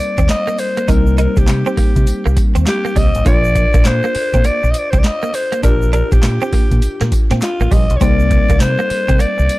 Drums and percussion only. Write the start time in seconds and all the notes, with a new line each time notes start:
0.18 kick, closed hi-hat, shaker
0.29 snare, clap, closed hi-hat, tambourine, shaker
0.47 shaker
0.58 open hi-hat, tambourine, shaker
0.77 closed hi-hat, shaker
0.88 kick, closed hi-hat, tambourine, shaker
1.07 shaker
1.18 closed hi-hat, shaker
1.36 kick, closed hi-hat, shaker
1.47 snare, clap, closed hi-hat, tambourine, shaker
1.66 shaker
1.77 kick, open hi-hat, tambourine
1.96 kick, closed hi-hat, shaker
2.07 closed hi-hat, tambourine, shaker
2.26 shaker
2.37 kick, closed hi-hat, tambourine, shaker
2.55 closed hi-hat, shaker
2.66 snare, clap, closed hi-hat, tambourine, shaker
2.85 shaker
2.96 kick, open hi-hat, tambourine, shaker
3.15 closed hi-hat, shaker
3.26 kick, closed hi-hat, tambourine, shaker
3.44 shaker
3.55 kick, closed hi-hat, shaker
3.74 kick, closed hi-hat, shaker
3.85 snare, clap, closed hi-hat, tambourine, shaker
4.03 shaker
4.15 open hi-hat, tambourine
4.33 kick, closed hi-hat, shaker
4.44 closed hi-hat, tambourine, shaker
4.64 shaker
4.74 closed hi-hat, tambourine, shaker
4.93 kick, closed hi-hat, shaker
5.04 snare, clap, closed hi-hat, tambourine, shaker
5.23 shaker
5.34 open hi-hat, tambourine, shaker
5.52 closed hi-hat, shaker
5.63 kick, closed hi-hat, tambourine, shaker
5.82 shaker
5.93 closed hi-hat, shaker
6.12 kick, closed hi-hat, shaker
6.23 snare, clap, closed hi-hat, tambourine, shaker
6.41 shaker
6.53 kick, open hi-hat, tambourine
6.71 kick, closed hi-hat, shaker
6.82 closed hi-hat, tambourine, shaker
7.01 snare, shaker
7.12 kick, closed hi-hat, tambourine, shaker
7.31 snare, closed hi-hat, shaker
7.41 snare, clap, closed hi-hat, tambourine, shaker
7.60 shaker
7.71 kick, open hi-hat, tambourine, shaker
7.90 closed hi-hat, shaker
8.01 kick, closed hi-hat, tambourine, shaker
8.20 shaker
8.31 kick, closed hi-hat, shaker
8.49 kick, closed hi-hat, shaker
8.60 snare, clap, closed hi-hat, tambourine, shaker
8.79 shaker
8.90 open hi-hat, tambourine
9.08 kick, closed hi-hat, shaker
9.19 closed hi-hat, tambourine, shaker
9.39 shaker
9.49 closed hi-hat, tambourine, shaker